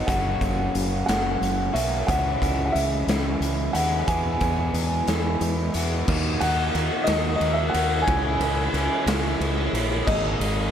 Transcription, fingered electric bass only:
0.08 0.35 F#1 medium
0.41 0.68 F#1 medium
0.75 1.02 F#1 medium
1.09 1.36 F#1 medium
1.41 1.69 F#1 medium
1.75 2.02 B1 medium
2.08 2.35 C#2 loud
2.42 2.69 C#2 medium
2.75 3.02 C#2 medium
3.07 3.35 C#2 medium
3.40 3.68 C#2 medium
3.75 4.02 D#2 medium
4.08 4.35 E2 loud
4.41 4.69 E2 medium
4.73 5.01 E2 medium
5.08 5.35 E2 medium
5.41 5.68 E2 loud
5.75 6.02 E2 medium
6.08 6.35 D#2 medium
6.41 6.69 D#2 medium
6.75 6.89 D#2 loud
7.08 7.35 D#2 medium
7.41 7.68 D#2 medium
7.74 8.02 D#2 medium
8.08 8.35 C#2 loud
8.40 8.68 C#2 medium
8.74 8.88 C#2 loud
9.06 9.34 C#2 medium
9.40 9.68 C#2 medium
9.73 10.01 A#1 loud
10.07 10.35 G#1 loud
10.40 10.68 G#1 loud

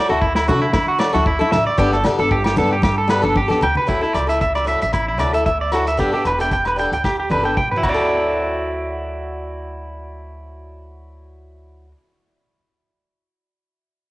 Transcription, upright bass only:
0.10 0.50 D2 medium
0.49 0.72 D3 loud
0.74 1.10 D3 medium
1.14 1.38 D2 medium
1.53 1.65 A1 medium
1.78 2.02 G1 loud
2.19 2.58 G1 medium
2.56 2.80 G2 medium
2.83 3.19 G2 loud
3.23 3.47 G1 medium
3.62 3.75 D2 loud
3.89 4.01 D2 medium
4.14 4.74 C#2 medium
4.82 5.20 A1 medium
5.20 5.43 D2 medium
5.46 6.00 D2 medium
5.98 6.11 G1 medium
6.25 6.85 E1 medium
6.92 7.31 D2 medium
7.30 7.53 G1 medium
7.57 7.80 A1 medium
7.83 11.91 D2 medium

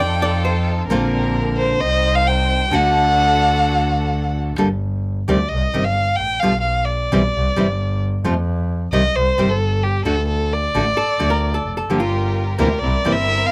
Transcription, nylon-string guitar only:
0.90 1.80 D3 medium
0.90 1.80 A#3 medium
0.90 1.80 C4 loud
0.90 1.81 F4 medium
2.71 4.57 D3 medium
2.71 4.58 A3 medium
2.71 4.58 D4 medium
2.71 4.58 F#4 medium
4.58 4.67 D3 medium
4.58 4.67 G3 medium
4.58 4.67 A#3 medium
4.58 4.68 D4 medium
4.58 4.68 A4 medium
5.28 5.37 C3 medium
5.28 5.37 D#3 medium
5.28 5.38 G3 medium
5.28 5.38 C4 medium
5.28 5.37 G4 medium
5.74 5.83 C3 medium
5.74 5.83 D#3 medium
5.74 5.84 G3 medium
5.74 5.83 C4 medium
5.74 5.83 G4 medium
6.42 6.52 B2 medium
6.42 6.52 D3 medium
6.42 6.52 G3 medium
6.42 6.53 B3 medium
6.42 6.53 F4 medium
7.12 7.21 C3 medium
7.12 7.21 E3 medium
7.12 7.21 G3 medium
7.12 7.21 C4 medium
7.12 7.21 E4 medium
7.56 7.66 C3 medium
7.56 7.66 E3 medium
7.56 7.66 G3 medium
7.56 7.66 C4 medium
7.56 7.66 E4 medium
8.24 8.33 C3 medium
8.24 8.33 F3 medium
8.24 8.34 A3 medium
8.24 8.34 C4 medium
8.24 8.34 F4 medium
8.93 9.01 C3 medium
8.93 9.01 D#3 medium
8.93 9.02 G3 medium
8.93 9.02 C4 medium
8.93 9.02 G4 medium
9.38 9.47 C3 medium
9.38 9.47 D#3 medium
9.38 9.47 G3 medium
9.38 9.47 C4 medium
9.38 9.48 G4 medium
10.05 10.14 D3 medium
10.05 10.14 A3 medium
10.05 10.15 D4 medium
10.05 10.15 F#4 medium
10.75 10.83 D3 medium
10.75 10.83 A3 medium
10.75 10.83 D4 medium
10.75 10.84 F#4 medium
11.19 11.29 D3 medium
11.19 11.29 A3 medium
11.19 11.29 D4 medium
11.19 11.29 F#4 medium
11.90 11.99 D3 medium
11.90 11.99 F3 medium
11.90 11.99 A#3 medium
11.90 11.99 D4 medium
11.90 11.99 G4 medium
12.58 12.67 C3 medium
12.58 12.67 E3 medium
12.58 12.68 A#3 medium
12.58 12.68 C4 medium
12.58 12.68 E4 medium
13.05 13.13 C3 medium
13.05 13.14 E3 medium
13.05 13.14 A#3 medium
13.05 13.14 C4 medium
13.05 13.14 E4 medium

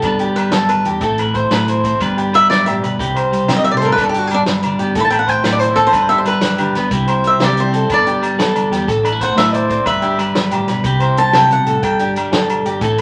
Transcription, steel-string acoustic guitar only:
0.36 0.53 B4 medium
0.52 0.69 A4 medium
0.69 0.85 B4 medium
2.35 2.49 E5 loud
2.50 2.66 D5 medium
2.66 2.76 E5 medium
3.56 3.64 D#5 medium
3.64 3.71 E5 medium
3.71 3.76 D5 medium
3.77 3.87 C5 medium
3.85 3.95 A#4 medium
3.92 4.03 B4 medium
4.04 4.09 A4 medium
4.09 4.18 G4 medium
4.18 4.27 F#4 medium
4.27 4.37 G4 medium
4.34 4.41 D4 medium
5.00 5.04 B5 medium
5.05 5.10 A5 medium
5.10 5.19 G5 medium
5.19 5.29 F#5 medium
5.29 5.54 G5 medium
5.52 5.59 D5 medium
5.59 5.68 C5 medium
5.68 5.77 E4 soft
5.76 5.85 A4 medium
5.87 5.94 C5 medium
5.94 6.03 B4 medium
6.03 6.11 C5 medium
6.09 6.18 E5 loud
6.18 6.26 C5 medium
6.27 6.89 B4 medium
7.27 7.42 E5 medium
7.44 7.58 D5 medium
7.60 7.89 C5 medium
7.94 8.23 D5 medium
9.23 9.37 F#5 medium
9.38 9.53 E5 medium
9.53 9.86 D5 medium
9.87 10.17 E5 medium
11.18 11.34 A5 loud
11.36 11.51 G5 loud
11.52 11.82 F#5 medium
11.83 12.14 G5 medium

